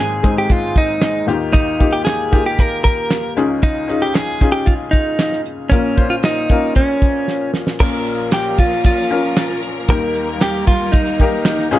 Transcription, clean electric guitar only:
Already playing: G#4
0.38 G4
0.52 F4
0.78 D#4
1.53 D#4
1.93 G4
2.05 G#4
2.46 G4
2.60 A#4
2.84 A#4
3.63 D#4
4.02 G4
4.14 G#4
4.52 G4
4.66 F4
4.91 D#4
5.70 C#4
6.10 F4
6.25 D#4
6.76 C#4
7.80 A#4
8.33 G4
8.60 F4
8.86 F4
9.90 A#4
10.42 G4
10.67 F4
10.92 D#4

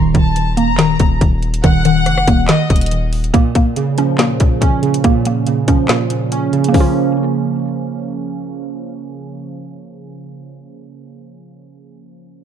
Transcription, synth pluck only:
Already playing: D#3
0.14 D#3
0.57 A#3
0.78 D#3
1.64 D#3
1.85 D#3
2.28 A#3
2.49 D#3
3.34 A#3
3.56 A#3
3.98 C#4
4.19 A#3
5.05 A#3
5.27 A#3
5.68 C#4
5.89 A#3
6.68 A#3
6.74 C#4
6.80 F4

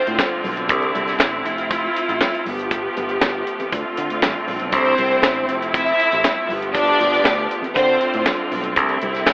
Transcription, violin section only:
Already playing: C4 C5
4.72 C4 C5
5.74 E4 E5
6.73 D4 D5
7.75 C4 C5

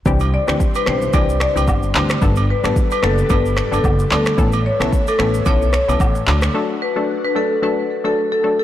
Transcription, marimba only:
0.34 D5
0.76 B4
0.88 C5
1.14 D5
1.42 D5
2.50 B4
2.92 B4
3.05 A4
3.31 B4
3.73 A4
4.12 A4
4.66 C#5
5.08 A4
5.20 B4
5.47 C#5
5.74 C#5
6.82 B4
7.24 B4
7.36 A4
7.63 B4
8.05 A4
8.32 A4
8.59 A4

